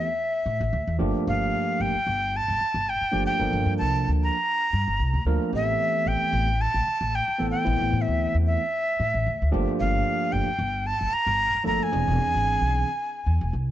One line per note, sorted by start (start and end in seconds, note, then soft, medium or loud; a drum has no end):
0.00 0.97 E5 medium
0.46 0.58 A2 medium
0.61 0.70 A1 medium
0.73 0.84 D2 medium
0.87 0.97 E2 medium
0.98 1.12 G1 medium
0.98 1.94 F3 medium
0.98 1.95 A3 medium
0.98 1.95 A#3 medium
0.98 1.95 D4 medium
0.98 1.95 G4 medium
1.27 1.48 G1 medium
1.27 1.83 F5 medium
1.80 1.91 G1 medium
1.80 2.38 G5 medium
1.94 muted upright bass stroke soft
2.07 2.39 G1 medium
2.37 2.91 A5 medium
2.48 2.58 G1 medium
2.61 muted upright bass stroke soft
2.74 2.95 G1 medium
2.89 3.24 G5 medium
3.01 muted upright bass stroke soft
3.11 3.25 G1 medium
3.11 3.37 F3 medium
3.11 3.36 A3 medium
3.11 3.36 A#3 medium
3.11 3.36 D4 medium
3.11 3.37 G4 medium
3.26 3.74 G5 medium
3.39 3.51 G1 loud
3.39 4.35 F3 medium
3.39 4.35 A#3 medium
3.39 4.35 D4 medium
3.39 4.35 A4 medium
3.39 4.35 A#4 medium
3.53 3.63 G1 medium
3.66 3.78 G2 medium
3.78 4.02 C2 medium
3.78 4.10 A5 medium
4.08 4.29 D2 medium
4.24 5.24 A#5 loud
4.73 4.85 G2 medium
4.88 4.97 G1 medium
4.99 5.11 C2 medium
5.14 5.24 D2 medium
5.25 5.37 D2 medium
5.25 5.50 F3 medium
5.25 5.50 A3 medium
5.25 5.51 A#3 medium
5.25 5.51 D4 medium
5.25 5.50 A#4 medium
5.52 5.74 A1 medium
5.52 6.48 E3 medium
5.52 6.48 A3 medium
5.52 6.48 B3 medium
5.52 6.48 C4 medium
5.52 6.49 G4 medium
5.52 6.09 E5 medium
6.06 6.18 A1 medium
6.06 6.63 G5 loud
6.33 6.65 A1 medium
6.61 7.17 A5 loud
6.74 6.84 A1 medium
6.87 muted upright bass stroke soft
7.01 7.22 A1 medium
7.15 7.50 G5 medium
7.28 muted upright bass stroke soft
7.38 7.51 A1 medium
7.38 7.63 E3 medium
7.38 7.63 A3 medium
7.38 7.63 B3 medium
7.38 7.63 C4 medium
7.38 7.63 A4 medium
7.51 8.03 G5 medium
7.64 7.78 A1 loud
7.64 8.60 E3 medium
7.64 8.61 A3 medium
7.64 8.61 B3 medium
7.64 8.61 C4 medium
7.64 8.61 E4 medium
7.80 7.90 A1 medium
7.93 8.04 A2 medium
8.01 8.37 E5 medium
8.08 8.29 D2 medium
8.34 8.55 E2 medium
8.47 9.49 E5 medium
9.00 9.11 A2 medium
9.14 9.24 A1 medium
9.26 9.38 D2 medium
9.42 9.51 D2 medium
9.52 9.65 G1 medium
9.52 10.47 F3 medium
9.52 10.48 A3 medium
9.52 10.48 A#3 medium
9.52 10.48 D4 medium
9.52 10.48 G4 loud
9.80 10.01 G1 medium
9.80 10.34 F5 medium
10.32 10.45 G1 medium
10.32 10.88 G5 medium
10.48 muted upright bass stroke soft
10.59 10.91 G1 medium
10.87 11.15 A5 medium
11.01 11.10 G1 medium
11.13 11.67 A#5 loud
11.13 muted upright bass stroke soft
11.27 11.48 G1 medium
11.55 muted upright bass stroke soft
11.63 11.78 G1 medium
11.63 11.89 F3 medium
11.63 11.89 A3 medium
11.63 11.89 A#3 medium
11.63 11.89 D4 medium
11.63 11.89 A4 medium
11.63 11.84 A#5 medium
11.83 13.54 G#5 medium
11.92 12.04 E1 loud
11.92 12.88 E3 medium
11.92 12.88 B3 medium
11.92 12.88 C4 medium
11.92 12.88 D4 medium
11.92 12.88 G#4 medium
12.08 12.17 E1 medium
12.20 12.31 E2 medium
12.35 12.55 G#1 medium
12.61 12.82 B1 medium
13.26 13.38 E2 medium
13.41 13.51 E1 medium
13.53 13.71 C2 medium